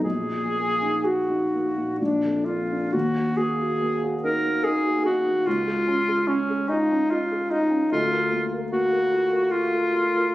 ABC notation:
X:1
M:3/4
L:1/16
Q:1/4=72
K:Ebm
V:1 name="Alto saxophone"
A4 G4 =D2 F2 | G2 A4 B2 A2 G2 | F4 D2 E2 F2 E2 | F2 z2 G4 F4 |]
V:2 name="Grand piano"
B,,, B,, B, E G E B, B,, B,,, F,, B, =D | E,, G B, G B, G E B, E G E B, | D,, A D A D A F D F A F D | =D,, B B, B B, B F B F B F B |]